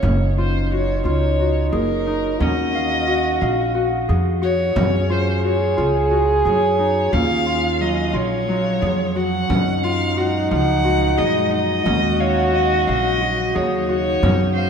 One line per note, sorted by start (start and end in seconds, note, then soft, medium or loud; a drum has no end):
0.00 1.00 F#1 medium
0.00 2.41 C#4 medium
0.00 2.06 D#4 medium
0.00 0.27 G#4 medium
0.00 0.34 C#5 medium
0.00 0.69 F5 medium
0.00 frame drum medium
0.04 2.41 D#4 medium
0.38 0.78 F4 medium
0.38 0.70 C5 medium
0.72 1.11 F#4 medium
0.72 1.04 C#5 medium
1.04 1.68 C#2 medium
1.04 1.46 F4 medium
1.04 1.69 C#5 medium
1.04 frame drum soft
1.40 2.81 F#4 medium
1.72 2.36 F#1 medium
1.72 4.00 G#4 medium
1.72 2.43 A#4 medium
1.72 frame drum soft
2.07 4.77 D#4 medium
2.07 frame drum soft
2.39 3.37 D#2 medium
2.39 4.75 C#4 medium
2.39 4.49 F#4 loud
2.39 3.76 D#5 medium
2.39 frame drum medium
2.75 3.14 F5 medium
3.08 3.47 F#4 medium
3.41 4.05 A#1 medium
3.41 3.81 F5 medium
3.41 frame drum soft
3.75 4.41 F#4 medium
4.08 4.73 F2 medium
4.08 6.36 G#4 medium
4.08 frame drum soft
4.42 5.16 F#4 medium
4.42 5.13 C#5 loud
4.42 frame drum soft
4.76 5.74 F#2 medium
4.76 7.13 C#4 medium
4.76 7.14 G#4 loud
4.76 frame drum medium
5.10 5.50 F4 medium
5.10 5.45 C5 medium
5.44 5.83 F#4 medium
5.44 6.09 C#5 medium
5.77 6.42 C#2 medium
5.77 6.17 F4 medium
5.77 frame drum soft
6.11 7.52 F#4 medium
6.45 7.09 F#2 medium
6.45 8.72 G#4 medium
6.45 7.14 C#5 medium
6.45 frame drum soft
6.79 9.49 D#4 medium
6.79 frame drum soft
7.12 8.11 D#2 medium
7.12 9.49 C#4 medium
7.12 9.16 F4 medium
7.12 7.83 F5 medium
7.12 frame drum medium
7.46 7.86 F4 medium
7.80 8.47 F#3 medium
7.80 8.16 D#5 medium
8.14 8.78 A#1 medium
8.14 8.54 F4 medium
8.14 9.18 C#5 loud
8.14 frame drum soft
8.48 9.55 F#3 medium
8.82 9.46 F2 medium
8.82 11.09 G#4 medium
8.82 frame drum medium
9.15 9.90 F#4 medium
9.15 9.85 F#5 medium
9.15 frame drum soft
9.49 10.47 F#2 medium
9.49 11.84 A#2 medium
9.49 11.84 G#3 medium
9.49 11.85 C#4 medium
9.49 11.88 D#4 loud
9.49 14.70 D#4 medium
9.49 frame drum medium
9.83 10.23 F4 medium
9.83 10.19 F5 medium
10.17 10.57 F#4 medium
10.17 10.51 F#5 medium
10.51 11.15 C#2 medium
10.51 11.92 F3 medium
10.51 11.20 F#5 loud
10.51 frame drum soft
10.84 12.26 F#4 medium
11.17 11.83 F#2 medium
11.17 13.45 G#4 medium
11.17 11.52 D#5 medium
11.17 frame drum soft
11.51 14.21 D#4 medium
11.51 12.21 D#5 medium
11.51 frame drum soft
11.85 12.84 D#2 loud
11.85 14.20 C#3 medium
11.85 14.20 F#3 medium
11.85 14.22 C#4 medium
11.85 13.96 F#4 loud
11.85 frame drum medium
12.20 12.56 C#5 medium
12.20 12.59 F5 medium
12.53 12.93 F#4 medium
12.53 12.88 D#5 medium
12.87 13.52 A#1 medium
12.87 13.57 D#5 medium
12.87 13.27 F5 medium
12.87 frame drum soft
13.21 13.88 F#4 medium
13.55 14.19 D#2 medium
13.55 14.70 G#4 medium
13.55 13.88 C#5 medium
13.55 frame drum soft
13.88 14.63 F#4 medium
13.88 14.53 C#5 loud
13.88 frame drum soft
14.22 14.70 F#2 medium
14.22 14.70 C#4 medium
14.22 14.70 F#4 loud
14.22 frame drum medium
14.55 14.70 C5 medium
14.55 14.70 F5 medium